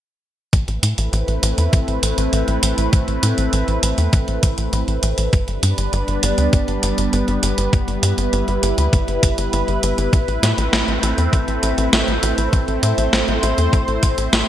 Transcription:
0.53 analog synth bass A1, analog synth pad A3 C4 E4 B4, kick, closed hi-hat
0.68 analog synth bass A1, closed hi-hat
0.83 analog synth bass A2, closed hi-hat
0.98 analog synth bass A1, closed hi-hat
1.13 analog synth bass A1, closed hi-hat
1.28 analog synth bass A1, closed hi-hat
1.43 analog synth bass A1, closed hi-hat
1.58 analog synth bass E2, closed hi-hat
1.73 analog synth bass A1, kick, closed hi-hat
1.88 analog synth bass A1, closed hi-hat
2.03 analog synth bass A1, closed hi-hat
2.18 analog synth bass A1, closed hi-hat
2.33 analog synth bass A1, closed hi-hat
2.48 analog synth bass A1, closed hi-hat
2.63 analog synth bass A1, closed hi-hat
2.78 analog synth bass A1, closed hi-hat
2.93 analog synth bass A1, kick, closed hi-hat
3.08 analog synth bass A1, closed hi-hat
3.23 analog synth bass A2, closed hi-hat
3.38 analog synth bass A1, closed hi-hat
3.53 analog synth bass A1, closed hi-hat
3.68 analog synth bass A1, closed hi-hat
3.83 analog synth bass A1, closed hi-hat
3.98 analog synth bass E2, closed hi-hat
4.13 analog synth bass A1, kick, closed hi-hat
4.28 analog synth bass A1, closed hi-hat
4.43 analog synth bass A1, kick, closed hi-hat
4.58 analog synth bass A1, closed hi-hat
4.73 analog synth bass A1, closed hi-hat
4.88 analog synth bass A1, closed hi-hat
5.03 analog synth bass A1, closed hi-hat
5.18 analog synth bass A1, closed hi-hat
5.33 analog synth bass G1, analog synth pad G3 B3 D4 B4, kick, closed hi-hat
5.48 analog synth bass G1, closed hi-hat
5.63 analog synth bass G2, closed hi-hat
5.78 analog synth bass G1, closed hi-hat
5.93 analog synth bass G1, closed hi-hat
6.08 analog synth bass G1, closed hi-hat
6.23 analog synth bass G1, closed hi-hat
6.38 analog synth bass D2, closed hi-hat
6.53 analog synth bass G1, kick, closed hi-hat
6.68 analog synth bass G1, closed hi-hat
6.83 analog synth bass G1, closed hi-hat
6.98 analog synth bass G1, closed hi-hat
7.13 analog synth bass G1, closed hi-hat
7.28 analog synth bass G1, closed hi-hat
7.43 analog synth bass G1, closed hi-hat
7.58 analog synth bass G1, closed hi-hat
7.73 analog synth bass G1, analog synth pad E4, kick, closed hi-hat
7.88 analog synth bass G1, closed hi-hat
8.03 analog synth bass G2, closed hi-hat
8.18 analog synth bass G1, closed hi-hat
8.33 analog synth bass G1, closed hi-hat
8.48 analog synth bass G1, closed hi-hat
8.63 analog synth bass G1, closed hi-hat
8.78 analog synth bass D2, closed hi-hat
8.93 analog synth bass G1, kick, closed hi-hat
9.08 analog synth bass G1, closed hi-hat
9.23 analog synth bass G1, kick, closed hi-hat
9.38 analog synth bass G1, closed hi-hat
9.53 analog synth bass G1, closed hi-hat
9.68 analog synth bass G1, closed hi-hat
9.83 analog synth bass G1, closed hi-hat
9.98 analog synth bass G1, closed hi-hat
10.13 analog synth bass A1, analog synth pad A3 C4, kick, closed hi-hat
10.28 analog synth bass A1, closed hi-hat
10.43 analog synth bass A2, snare, closed hi-hat
10.58 analog synth bass A1, closed hi-hat
10.73 analog synth bass A1, snare, closed hi-hat
10.88 analog synth bass A1, closed hi-hat
11.03 analog synth bass A1, closed hi-hat
11.18 analog synth bass E2, closed hi-hat
11.33 analog synth bass A1, kick, closed hi-hat
11.48 analog synth bass A1, closed hi-hat
11.63 analog synth bass A1, closed hi-hat
11.78 analog synth bass A1, closed hi-hat
11.93 analog synth bass A1, snare, closed hi-hat
12.08 analog synth bass A1, closed hi-hat
12.23 analog synth bass A1, closed hi-hat
12.38 analog synth bass A1, closed hi-hat
12.53 analog synth bass A1, analog synth pad C5, kick, closed hi-hat
12.68 analog synth bass A1, closed hi-hat
12.83 analog synth bass A2, closed hi-hat
12.98 analog synth bass A1, closed hi-hat
13.13 analog synth bass A1, snare, closed hi-hat
13.28 analog synth bass A1, closed hi-hat
13.43 analog synth bass A1, closed hi-hat
13.58 analog synth bass E2, closed hi-hat
13.73 analog synth bass A1, kick, closed hi-hat
13.88 analog synth bass A1, closed hi-hat
14.03 analog synth bass A1, kick, closed hi-hat
14.18 analog synth bass A1, closed hi-hat
14.33 analog synth bass A1, snare, closed hi-hat

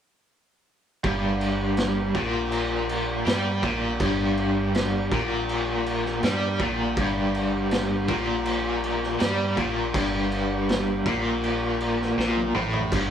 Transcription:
1.04 picked electric bass G1, overdriven electric guitar G2, transistor combo organ G3 D4 G4 A#4, kick, crash
1.41 crash
1.77 snare, crash
2.15 picked electric bass A#1, overdriven electric guitar A#2, kick, crash
2.52 crash
2.89 crash
3.26 picked electric bass G2, overdriven electric guitar G3, snare, crash
3.63 picked electric bass A#1, overdriven electric guitar A#2, kick, crash
4.00 picked electric bass G1, overdriven electric guitar G2, kick, crash
4.37 crash
4.74 snare, crash
5.12 picked electric bass A#1, overdriven electric guitar A#2, kick, crash
5.49 crash
5.86 crash
6.05 snare
6.23 picked electric bass G2, overdriven electric guitar G3, snare, crash
6.59 picked electric bass A#1, overdriven electric guitar A#2, kick, crash
6.97 picked electric bass G1, overdriven electric guitar G2, kick, crash
7.35 crash
7.71 snare, crash
8.08 picked electric bass A#1, overdriven electric guitar A#2, kick, crash
8.45 crash
8.84 crash
9.03 snare
9.20 picked electric bass G2, overdriven electric guitar G3, snare, crash
9.57 picked electric bass A#1, overdriven electric guitar A#2, kick, crash
9.94 picked electric bass G1, overdriven electric guitar G2, kick, crash
10.32 crash
10.69 snare, crash
11.06 picked electric bass A#1, overdriven electric guitar A#2, kick, crash
11.44 crash
11.80 crash
12.02 snare
12.18 picked electric bass A#1, overdriven electric guitar A#2, snare
12.37 high tom
12.54 picked electric bass A1, overdriven electric guitar A2, mid tom
12.73 floor tom
12.92 picked electric bass G1, overdriven electric guitar G2, kick, splash, crash

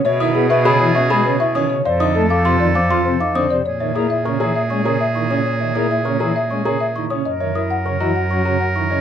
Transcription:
0.05 cello B2, oboe G#4, marimba C#5, grand piano C#5, celesta E5
0.20 pipe organ D#3, grand piano E4, celesta D#6
0.35 pipe organ B3, marimba G#4
0.50 grand piano B4, marimba E5, celesta C#6
0.65 pipe organ C#3, grand piano G#4, celesta B5
0.80 pipe organ E3, marimba C#5
0.95 grand piano C#4, marimba E5, celesta C#6
1.10 pipe organ G#3, grand piano G#4, celesta B5
1.25 pipe organ C#3, marimba B4
1.40 grand piano E4, marimba E5, celesta C#6
1.55 pipe organ D#3, grand piano C#4, celesta D#6
1.70 pipe organ C#3, marimba C#5
1.85 cello F2, oboe A4, grand piano C5, marimba D5, celesta F5
2.00 pipe organ D3, grand piano D#4, celesta D#6
2.15 pipe organ A3, marimba A4
2.30 grand piano A4, marimba F5, celesta D6
2.45 pipe organ C3, grand piano F4, celesta C6
2.60 pipe organ D#3, marimba D5
2.75 grand piano C4, marimba F5, celesta D6
2.90 pipe organ F3, grand piano F4, celesta C6
3.05 pipe organ C3, marimba C5
3.20 grand piano D#4, marimba F5, celesta D6
3.35 pipe organ D3, grand piano C4, celesta D#6
3.50 pipe organ C3, marimba D5
3.65 cello A#2, oboe G#4, marimba C#5
3.80 pipe organ D#3, grand piano C#5, celesta E5
3.95 pipe organ A#3, grand piano E4, marimba G#4, celesta D#6
4.10 marimba E5
4.25 pipe organ C#3, grand piano A#4, celesta C#6
4.40 pipe organ E3, grand piano G#4, marimba C#5, celesta A#5
4.56 marimba E5
4.70 pipe organ G#3, grand piano C#4, celesta C#6
4.85 pipe organ C#3, grand piano G#4, marimba A#4, celesta A#5
5.01 marimba E5
5.15 pipe organ D#3, grand piano E4, celesta C#6
5.30 pipe organ C#3, grand piano C#4, marimba C#5, celesta D#6
5.46 marimba C#5
5.60 pipe organ D#3, grand piano C#5, celesta E5
5.75 pipe organ A#3, grand piano E4, marimba G#4, celesta D#6
5.91 marimba E5
6.05 pipe organ C#3, grand piano A#4, celesta C#6
6.20 pipe organ E3, grand piano G#4, marimba C#5, celesta A#5
6.36 marimba E5
6.50 pipe organ G#3, grand piano C#4, celesta C#6
6.65 pipe organ C#3, grand piano G#4, marimba A#4, celesta A#5
6.80 marimba E5
6.95 pipe organ D#3, grand piano E4, celesta C#6
7.10 pipe organ C#3, grand piano C#4, marimba C#5, celesta D#6
7.25 cello F#2, oboe A#4, marimba D#5
7.40 pipe organ D#3, grand piano C#5, celesta E5
7.55 grand piano E4, marimba A#4, celesta D#6
7.70 marimba F#5
7.85 pipe organ C#3, grand piano A#4, celesta C#6
8.00 pipe organ E3, grand piano F#4, marimba D#5, celesta A#5
8.15 marimba F#5
8.30 pipe organ F#3, grand piano C#4, celesta C#6
8.45 pipe organ C#3, grand piano F#4, marimba C#5, celesta A#5
8.60 marimba F#5
8.75 pipe organ D#3, grand piano E4, celesta C#6
8.90 pipe organ C#3, grand piano C#4, marimba D#5

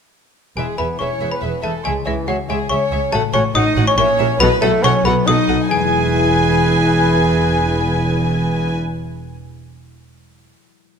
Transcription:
0.57 double bass section E1, cello section E2, harp E3, bassoon G#3, viola section G#4 B4, violin section G#4 E5, xylophone G#5
0.77 double bass section E1, cello section E2, bassoon B3, harp E4, viola section G#4 B4, violin section B4 E5, xylophone B5
0.99 double bass section E1, cello section E2, bassoon C#4, harp G#4, viola section G#4 B4, violin section C#5 E5, xylophone C#6
1.21 double bass section E1, cello section E2, viola section G#4 B4, violin section E5, harp B5
1.31 bassoon B3, violin section B4, xylophone B5
1.42 double bass section E1, cello section E2, viola section G#4 B4, violin section E5, harp E5
1.63 double bass section E1, cello section E2, bassoon A3, viola section G#4 B4, harp G#4, violin section A4 E5, xylophone A5
1.84 double bass section C#2, cello section C#2, harp C#3, bassoon G#3, violin section G#4 E5, viola section G#4 C#5, xylophone G#5
2.05 double bass section C#2, cello section C#2, bassoon E3, harp G#3, violin section E4 E5, viola section G#4 C#5, xylophone E5
2.27 double bass section C#2, cello section C#2, bassoon F#3, violin section F#4 E5, viola section G#4 C#5, harp C#5, xylophone F#5
2.48 double bass section C#2, cello section C#2, bassoon G#3, viola section G#4 C#5, violin section G#4 E5, harp E5, xylophone G#5
2.69 double bass section C#2, cello section C#2, bassoon C#4, viola section G#4 C#5, harp G#4, violin section C#5 E5, xylophone C#6
2.92 double bass section C#2, cello section C#2, viola section G#4 C#5, harp C#5, violin section E5
3.12 double bass section A1, harp A2, cello section A2, bassoon A3, viola section F#4 C#5, violin section A4 F#5, xylophone A5
3.32 double bass section A1, cello section A2, harp A3, bassoon C#4, viola section F#4 C#5, violin section C#5 F#5, xylophone C#6
3.55 double bass section A1, cello section A2, bassoon D#4, viola section F#4 C#5, harp C#5, violin section D#5 F#5, xylophone D#6
3.76 double bass section A1, cello section A2, viola section F#4 C#5, harp F#5, violin section F#5
3.87 bassoon C#4, violin section C#5, xylophone C#6
3.97 double bass section A#1, harp A#2, cello section A#2, bassoon C#4, viola section G4 A#4, violin section C#5 E5, xylophone C#6
4.19 double bass section A#1, cello section A#2, harp E4 A#4, viola section G4 A#4, violin section E5
4.40 double bass section B1, harp B2, cello section B2, bassoon B3, viola section F#4 A4, violin section B4 F#5, xylophone B5
4.61 double bass section B1, cello section B2, harp F#3, bassoon A3, viola section F#4 A4, violin section A4 F#5, xylophone A5
4.83 double bass section B1, cello section B2, bassoon C#4, viola section F#4 A4, harp A4, violin section C#5 F#5, xylophone C#6
5.05 double bass section B1, cello section B2, bassoon B3, viola section F#4 A4, violin section B4 F#5, harp F#5, xylophone B5
5.26 double bass section B1, cello section B2, bassoon D#4, viola section F#4 A4, harp F#4, violin section D#5 F#5, xylophone D#6
5.48 double bass section B1, cello section B2, viola section F#4 A4, harp A4, violin section F#5
5.69 double bass section E1, cello section E2, harp E3, viola section E4 B4, bassoon G#4, violin section G#5, xylophone G#5
5.77 harp G#3
5.84 harp E4
5.91 harp B4
5.98 harp E5

